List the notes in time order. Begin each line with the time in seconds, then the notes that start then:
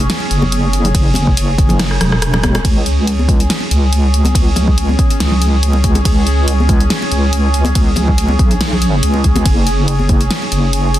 Already playing: C#4 G#4
0.09 snare, closed hi-hat, ride, high conga
0.20 muted conga
0.31 F#1, closed hi-hat
0.42 high conga, low conga
0.52 closed hi-hat, ride
0.73 closed hi-hat
0.84 closed hi-hat, low conga
0.95 F#1, kick, closed hi-hat, ride
1.14 closed hi-hat, muted conga, high conga
1.27 kick
1.37 closed hi-hat, ride
1.58 F#1, kick, closed hi-hat
1.69 closed hi-hat, low conga
1.79 cross-stick, snare, closed hi-hat, ride
1.91 cross-stick
2.01 E1, cross-stick, closed hi-hat, low conga
2.12 cross-stick
2.22 cross-stick, closed hi-hat, ride
2.33 cross-stick, muted conga, low conga
2.43 kick, cross-stick, closed hi-hat, high conga
2.55 cross-stick, closed hi-hat, muted conga
2.65 C#2 C#4 G#4, kick, closed hi-hat, ride
2.86 closed hi-hat
3.07 closed hi-hat, ride
3.19 high conga
3.29 kick, closed hi-hat
3.40 closed hi-hat
3.50 snare, closed hi-hat, ride
3.60 muted conga
3.71 C#2, closed hi-hat
3.93 closed hi-hat, ride
4.14 closed hi-hat
4.25 closed hi-hat, high conga
4.35 C#2, kick, closed hi-hat, ride
4.56 closed hi-hat, muted conga, low conga
4.68 kick
4.78 closed hi-hat, ride
4.89 high conga
4.99 kick, closed hi-hat
5.10 closed hi-hat
5.20 C#2, snare, closed hi-hat, ride
5.32 low conga
5.42 closed hi-hat
5.63 closed hi-hat, ride
5.73 muted conga
5.84 kick, closed hi-hat
5.95 closed hi-hat, muted conga, high conga
6.05 C#2, kick, closed hi-hat, ride
6.27 closed hi-hat
6.48 closed hi-hat, ride
6.60 high conga
6.69 kick, closed hi-hat
6.80 closed hi-hat
6.90 snare, closed hi-hat, ride
7.02 muted conga
7.12 C#2, closed hi-hat
7.33 closed hi-hat, ride
7.54 closed hi-hat
7.65 closed hi-hat, high conga
7.75 C#2, kick, closed hi-hat, ride
7.96 closed hi-hat, muted conga, low conga
8.08 kick
8.18 closed hi-hat, ride
8.28 high conga
8.39 B1, kick, closed hi-hat
8.51 closed hi-hat
8.61 snare, closed hi-hat, ride
8.72 low conga
8.82 closed hi-hat
9.03 C#2, closed hi-hat, ride
9.14 muted conga
9.24 kick, closed hi-hat
9.36 closed hi-hat, muted conga, high conga
9.46 F#1, kick, closed hi-hat, ride
9.67 closed hi-hat
9.88 closed hi-hat, ride
9.99 high conga
10.09 kick, closed hi-hat
10.21 closed hi-hat
10.31 snare, closed hi-hat, ride
10.42 muted conga
10.52 F#1, closed hi-hat
10.73 closed hi-hat, ride
10.94 closed hi-hat